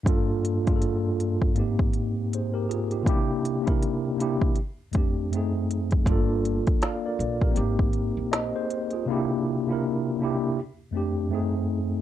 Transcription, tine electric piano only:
0.03 0.43 G2 medium
0.03 0.44 A#3 medium
0.03 0.45 D4 medium
0.08 0.46 F4 loud
0.08 0.46 A4 loud
0.64 1.55 G2 medium
0.64 1.54 A#3 medium
0.64 1.56 D4 medium
0.68 1.57 F4 medium
0.68 0.73 G#4 medium
0.76 1.61 A4 medium
1.53 2.76 G#2 medium
1.53 2.77 A#3 medium
1.53 2.78 C4 medium
1.58 2.32 D#4 medium
1.58 2.33 G4 medium
2.35 2.55 G#4 soft
2.35 2.55 C5 soft
2.54 2.68 G4 medium
2.54 2.68 A#4 medium
2.69 2.91 F4 medium
2.69 2.91 G#4 medium
2.92 3.28 D#4 soft
2.92 3.08 G4 medium
3.03 3.43 C3 loud
3.03 3.44 A#3 medium
3.03 3.45 D4 medium
3.07 3.45 E4 loud
3.07 3.46 G4 loud
3.61 4.02 C3 medium
3.61 4.03 A#3 medium
3.61 4.03 D4 medium
3.66 4.04 E4 medium
3.66 4.05 A#4 medium
4.16 4.55 C3 medium
4.16 4.56 A#3 medium
4.16 4.56 D4 medium
4.21 4.57 E4 medium
4.21 4.58 G4 medium
4.92 5.30 F2 medium
4.92 5.31 A3 medium
4.92 5.31 C4 medium
4.96 5.32 D4 medium
4.96 5.33 G4 medium
5.31 5.94 F#2 medium
5.31 5.95 A3 medium
5.31 5.96 C4 medium
5.35 5.96 D#4 medium
5.35 5.97 G#4 medium
6.06 6.44 A#3 loud
6.06 6.45 D4 loud
6.06 6.46 F4 medium
6.12 6.46 A4 loud
6.84 7.04 D5 medium
6.84 7.04 F5 medium
7.06 7.41 A#4 medium
7.06 7.40 D5 medium
7.43 7.56 G4 soft
7.43 7.78 A#4 medium
7.52 8.75 A#3 medium
7.52 8.76 C4 medium
7.52 8.77 D#4 medium
7.57 7.94 G4 medium
8.32 8.54 C5 medium
8.32 8.53 D#5 medium
8.56 8.91 G#4 medium
8.56 8.90 C5 medium
8.93 9.28 F4 soft
8.93 9.28 G#4 medium
9.06 9.45 C3 loud
9.06 9.46 A#3 loud
9.06 9.46 D4 medium
9.10 9.47 E4 loud
9.10 9.47 G4 loud
9.66 10.05 C3 medium
9.66 10.05 A#3 medium
9.66 10.06 D4 medium
9.71 10.07 E4 medium
9.71 10.08 A#4 medium
10.19 10.56 C3 medium
10.19 10.57 A#3 medium
10.19 10.58 D4 medium
10.23 10.58 E4 medium
10.23 10.59 G4 medium
10.91 11.30 F2 medium
10.91 11.29 A3 medium
10.91 11.31 C4 medium
10.96 11.32 D4 medium
10.96 11.33 G4 medium
11.29 11.93 F#2 medium
11.29 11.94 A3 medium
11.29 11.95 C4 medium
11.33 11.95 D#4 medium
11.33 11.96 G#4 medium

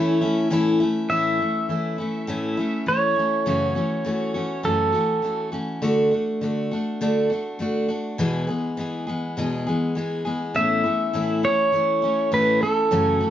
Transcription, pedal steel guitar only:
0.00 0.47 E4 medium
0.00 0.47 C#5 medium
1.10 2.83 E5 medium
2.88 4.70 C#5 medium
4.65 5.49 A4 medium
10.56 11.44 E5 medium
11.45 12.35 C#5 medium
12.34 12.62 B4 medium
12.63 13.30 A4 medium

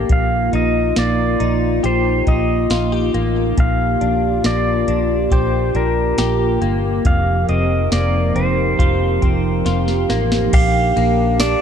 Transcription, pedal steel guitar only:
0.12 0.55 F5 medium
0.55 0.98 D#5 medium
0.99 1.81 D5 medium
1.86 2.29 C5 medium
2.28 3.11 D#5 medium
3.60 4.46 F5 medium
4.46 5.35 D5 medium
5.33 5.77 C5 medium
5.76 6.59 A#4 medium
7.07 7.49 F5 medium
7.49 7.92 D#5 medium
7.93 8.37 D5 medium
8.36 10.06 C5 medium
10.54 11.40 F5 loud
11.40 11.62 D5 loud

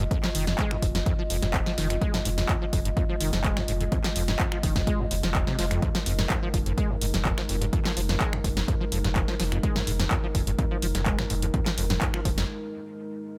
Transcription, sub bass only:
0.35 0.55 F1 loud
0.82 1.02 F1 medium
1.30 1.40 F1 loud
1.43 1.62 F1 medium
1.78 1.98 F1 medium
2.25 2.45 F1 loud
2.73 2.93 F1 medium
3.21 3.31 F1 loud
3.33 3.53 F1 medium
3.68 3.88 F1 medium
4.16 4.36 F1 loud
4.63 4.83 F1 medium
5.11 5.21 F1 loud
5.24 5.43 F1 medium
5.59 5.79 F1 medium
6.06 6.26 F1 loud
6.54 6.74 F1 medium
7.02 7.12 F1 loud
7.14 7.34 F1 medium
7.49 7.69 F1 medium
7.97 8.17 F1 loud
8.44 8.64 F1 medium
8.92 9.02 F1 loud
9.04 9.24 F1 loud
9.40 9.60 F1 medium
9.87 10.07 F1 loud
10.35 10.55 F1 medium
10.82 10.93 F1 loud
10.95 11.14 F1 medium
11.30 11.50 F1 medium
11.78 11.98 F1 loud
12.25 12.45 F1 medium

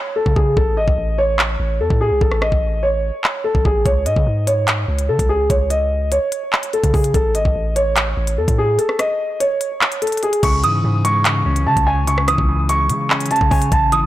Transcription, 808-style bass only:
0.26 0.36 C#3 loud
0.36 0.56 C#3 loud
0.57 0.79 A1 loud
0.77 0.87 G#1 loud
0.88 0.97 A1 loud
0.98 1.57 A1 loud
1.60 1.82 A1 loud
1.80 1.90 E2 medium
1.90 2.12 A2 loud
2.11 2.21 C2 loud
2.21 2.51 A1 loud
2.52 3.11 A1 loud
3.55 3.65 A1 loud
3.65 3.85 A1 loud
3.86 4.08 C#2 loud
4.06 4.16 G#2 loud
4.16 4.26 C#3 loud
4.27 4.86 G#2 loud
4.88 5.10 C#2 loud
5.09 5.19 C#3 loud
5.19 5.49 C#2 loud
5.50 6.19 C#2 loud
6.84 6.93 C#3 loud
6.94 7.14 C#3 loud
7.14 7.36 A1 loud
7.35 7.45 G#1 loud
7.45 7.55 A1 loud
7.55 8.15 A1 loud
8.17 8.39 A1 loud
8.38 8.47 E2 medium
8.48 8.79 A2 loud
10.43 10.65 C#2 loud
10.64 10.83 G#2 loud
10.84 11.43 G#2 loud
11.46 11.68 C#2 loud
11.66 11.76 C#3 medium
11.77 12.36 C#2 loud
12.38 12.91 C#2 loud
12.90 13.38 C#3 loud
13.41 13.51 C#3 loud
13.51 13.71 C#3 loud
13.72 13.94 A1 loud
13.92 14.06 G#1 loud

